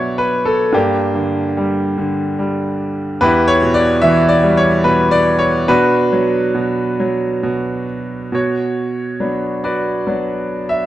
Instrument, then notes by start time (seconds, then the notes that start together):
grand piano
Already playing: B2 F#3 D4 F#4 B4 C#5 D5 E5
0.18 B4
0.45 A4
0.72 G2 A#3 D4 G4
1.14 D3
1.57 G3
1.98 D3
2.39 G3
3.21 E2 E4 G4 B4
3.48 C#5
3.62 B2
3.74 D5
4.01 E3 E5
4.29 D5
4.43 G3
4.57 C#5
4.84 B2 B4
5.11 D5
5.39 C#5
5.68 B2 D4 F#4 B4
6.12 F#3
6.55 B2
7.00 F#3
7.43 B2
8.32 B2 F#4 C#5
9.20 F#3 B3 D4
9.64 F#4 B4 D5
10.07 F#3 B3 D4
10.69 E5